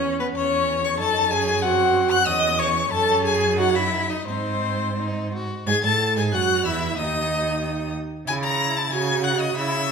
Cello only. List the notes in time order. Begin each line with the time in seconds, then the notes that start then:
Already playing: E2
0.35 E2
0.99 F#2
2.27 E2
2.91 F#2
4.27 G#2
5.67 G#2
5.84 A2
6.17 G#2
6.33 F#2
6.65 E2
6.97 D#2
8.27 C#3
8.91 C#3
9.55 C#3